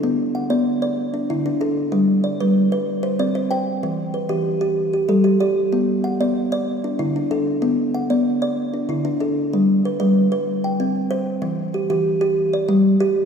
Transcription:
<<
  \new Staff \with { instrumentName = "Kalimba" } { \time 12/8 \key g \major \tempo 4. = 127 a'8 r8 fis''8 d''4. r8 d'8 e'8 d'8 a'4~ | a'8 r8 d''8 b'4. r8 c''8 d''8 c''8 g''4~ | g''8 r8 b'8 g'4. r8 g'8 a'8 g'8 d''4~ | d''8 r8 fis''8 d''4. r8 d'8 e'8 d'8 a'4~ |
a'8 r8 fis''8 d''4. r8 d'8 e'8 d'8 a'4~ | a'8 r8 b'8 b'4. r8 g''4. r4 | r4 g'8 g'4. r8 d''4. r4 | }
  \new Staff \with { instrumentName = "Kalimba" } { \time 12/8 \key g \major b4 r8 b4 d''8 r4 d4 d'4 | g4 r8 g4 b'8 r4 c'4 c''4 | e4 r8 e4 g'8 r4 g4 g'4 | b4 r8 b4 d''8 r4 d4 d'4 |
b4 r8 b4 d''8 r4 d4 d'4 | g4 r8 g4 b'8 r4 c'4 c''4 | e4 r8 e4 g'8 r4 g4 g'4 | }
>>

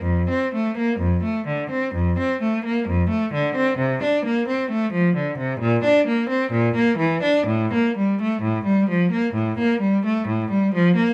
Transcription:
\new Staff \with { instrumentName = "Cello" } { \time 4/4 \key f \major \tempo 4 = 65 f,16 c'16 a16 bes16 f,16 a16 d16 c'16 f,16 c'16 a16 bes16 f,16 a16 d16 c'16 | c16 d'16 bes16 c'16 a16 f16 d16 c16 bes,16 d'16 bes16 c'16 bes,16 bes16 e16 d'16 | a,16 bes16 g16 a16 a,16 g16 f16 bes16 a,16 bes16 g16 a16 a,16 g16 f16 bes16 | }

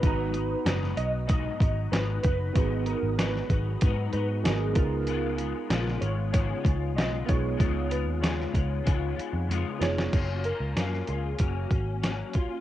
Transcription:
<<
  \new Staff \with { instrumentName = "Synth keys" } { \time 4/4 \key fis \major \tempo 4 = 95 b'4. dis''8 dis''4 b'8 b'8~ | b'8 ais'8 b'4. b'8 gis'8 ais'8~ | ais'4. cis''8 cis''4 dis''8 cis''8~ | cis''8 b'8 cis''2~ cis''8 cis''8~ |
cis''8 ais'4 gis'8 fis'4. eis'8 | }
  \new Staff \with { instrumentName = "Upright piano" } { \time 4/4 \key fis \major <b dis' fis' ais''>1 | <b dis' fis' gis'>2. <b dis' fis' ais'>8 <b dis' eis' gis'>8~ | <b dis' eis' gis'>2.~ <b dis' eis' gis'>8 <b dis' eis' gis'>8~ | <b dis' eis' gis'>2.~ <b dis' eis' gis'>8 <b dis' eis' gis'>8 |
r1 | }
  \new Staff \with { instrumentName = "Clean electric guitar" } { \time 4/4 \key fis \major <gis, fis b dis'>8 <fis b dis'>8 <gis, fis b dis'>8 <fis b dis'>8 <gis, fis b dis'>8 <fis b dis'>8 <gis, fis b dis'>8 <fis b dis'>8 | <gis, fis b dis'>8 <fis b dis'>8 <gis, fis b dis'>8 <fis b dis'>8 <gis, fis b dis'>8 <fis b dis'>8 <gis, fis b dis'>8 <gis b eis'>8 | <cis gis b eis'>8 <gis b eis'>8 <cis gis b eis'>8 <gis b eis'>8 <cis gis b eis'>8 <gis b eis'>8 <cis gis b eis'>8 <gis b eis'>8 | <cis gis b eis'>8 <gis b eis'>8 <cis gis b eis'>8 <gis b eis'>8 <cis gis b eis'>8 <gis b eis'>8 <cis gis b eis'>8 <gis b eis'>8 |
<fis ais cis' eis'>8 <ais cis' eis'>8 <fis ais cis' eis'>8 <ais cis' eis'>8 <fis ais cis'>8 <ais cis'>8 <fis ais cis'>8 <ais cis' eis'>8 | }
  \new Staff \with { instrumentName = "Picked electric bass" } { \clef bass \time 4/4 \key fis \major gis,,4 fis,,8 b,,4 gis,,8 gis,,8 fis,,8 | gis,,8. gis,,8. gis,,8 gis,8 gis,8 gis,,8 cis,8~ | cis,4 ais,,8 gis,,4 cis,8 b,,8 b,,8 | cis,8. dis,8. cis,8 cis,8 r16 eis,16 eis,16 r16 eis,,8 |
fis,,8. cis,16 fis,8 cis,8 fis,,8 gis,,4 r8 | }
  \new DrumStaff \with { instrumentName = "Drums" } \drummode { \time 4/4 <hh bd>8 hh8 <hh sn>16 sn16 hh8 <hh bd>8 <hh bd>8 <hh sn>8 <hh bd>8 | <hh bd>8 hh8 <hh sn>16 sn16 <hh bd>8 <hh bd>8 hh8 <hh sn>8 <hh bd>8 | hh8 hh8 <hh sn>16 sn16 hh8 <hh bd>8 <hh bd>8 <hh sn>8 <hh bd>8 | <hh bd>8 hh8 <hh sn>16 sn16 <hh bd>8 <hh bd>8 hh8 hh8 <hh sn>16 sn16 |
<cymc hh bd>8 hh8 <hh sn>16 sn16 hh8 <hh bd>8 <hh bd>8 <hh sn>8 <hh bd>8 | }
>>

